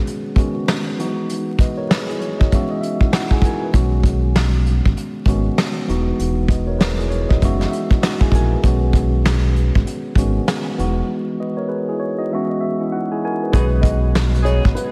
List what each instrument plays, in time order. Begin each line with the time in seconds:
Already playing: tine electric piano D#3 G#3 B3 C#4 F#4 G#4 B4
0.07 closed hi-hat
0.36 tine electric piano C#3 G#3 B3 C#4 F#4, kick, closed hi-hat
0.42 tine electric piano D#3
0.68 snare, closed hi-hat
0.97 tine electric piano E3 F#3 B3 D#4 F#4, closed hi-hat
1.04 tine electric piano G#3
1.30 closed hi-hat
1.59 tine electric piano B4 D#5, kick, closed hi-hat
1.77 tine electric piano A#4 C#5
1.89 tine electric piano G#4 B4, snare, closed hi-hat
2.09 tine electric piano E4 G#4, closed hi-hat
2.20 tine electric piano C#5, closed hi-hat
2.39 tine electric piano D#4 F#4 D#5, kick
2.52 tine electric piano E3 G#3 B3 C#4 F#4 E5, kick, closed hi-hat
2.70 tine electric piano D#5
2.81 tine electric piano E5, closed hi-hat
3.00 tine electric piano C#4 E4, kick
3.12 tine electric piano D#4 F#4 F#5, snare, closed hi-hat
3.31 tine electric piano E4 G#4 G#5, kick
3.42 tine electric piano A#4 G#5, kick, closed hi-hat
3.46 tine electric piano F#4
3.63 tine electric piano G#4 B4
3.72 sub bass B1, tine electric piano D#3 G#3 B3 C#4 F#4, kick, closed hi-hat
4.03 kick, closed hi-hat
4.36 snare, closed hi-hat
4.66 closed hi-hat
4.86 sub bass G#1, kick
4.97 closed hi-hat
5.26 sub bass G#1, tine electric piano C#3 G#3 B3 C#4 F#4, kick, closed hi-hat
5.32 tine electric piano D#3
5.58 snare, closed hi-hat
5.87 sub bass E1, tine electric piano E3 F#3 B3 D#4 F#4, closed hi-hat
5.94 tine electric piano G#3
6.19 sub bass E1, closed hi-hat
6.48 tine electric piano B4 D#5, kick, closed hi-hat
6.67 tine electric piano A#4 C#5
6.79 tine electric piano G#4 B4, snare, closed hi-hat
6.99 tine electric piano E4 G#4, closed hi-hat
7.10 tine electric piano C#5, closed hi-hat
7.29 sub bass D#1, tine electric piano D#4 F#4 D#5, kick
7.42 sub bass F#1, tine electric piano E3 G#3 B3 C#4 F#4 E5, kick, closed hi-hat
7.60 tine electric piano D#5, snare
7.71 tine electric piano E5, closed hi-hat
7.90 tine electric piano C#4 E4, kick
8.02 tine electric piano D#4 F#4 F#5, snare, closed hi-hat
8.21 tine electric piano E4 G#4 G#5, kick
8.32 sub bass A#1, tine electric piano A#4 G#5, kick, closed hi-hat
8.36 tine electric piano F#4
8.53 tine electric piano G#4 B4
8.62 sub bass B1, tine electric piano D#3 G#3 B3 C#4 F#4, kick, closed hi-hat
8.93 kick, closed hi-hat
9.25 snare, closed hi-hat
9.56 closed hi-hat
9.75 sub bass G#1, kick
9.87 closed hi-hat
10.15 sub bass G#1, tine electric piano C#3 G#3 B3 C#4 F#4, kick, closed hi-hat
10.22 tine electric piano D#3
10.48 snare, closed hi-hat
10.77 sub bass E1, tine electric piano E3 F#3 B3 D#4 F#4, closed hi-hat
10.84 tine electric piano G#3
11.40 tine electric piano B4 D#5
11.57 tine electric piano A#4 C#5
11.68 tine electric piano G#4 B4
11.89 tine electric piano E4 G#4
11.99 tine electric piano C#5
12.18 tine electric piano D#4 F#4 D#5
12.31 tine electric piano E3 G#3 B3 C#4 F#4 E5
12.50 tine electric piano D#5
12.61 tine electric piano E5
12.80 tine electric piano C#4 E4
12.92 tine electric piano D#4 F#4 F#5
13.11 tine electric piano E4 G#4 G#5
13.25 tine electric piano F#4 A#4 G#5
13.43 tine electric piano G#4 B4
13.51 sub bass B1, tine electric piano D#3 G#3 B3 C#4 F#4, tonewheel organ D#3 F#3 G#3 B3 F#4, saxophone section B3 D#4 G#4, upright piano B4, kick, closed hi-hat
13.81 upright piano D#5, kick, closed hi-hat
14.15 snare, closed hi-hat
14.35 closed hi-hat
14.42 saxophone section B3 D#4 G#4, upright piano C#5, closed hi-hat
14.65 sub bass G#1, kick
14.75 upright piano B4, closed hi-hat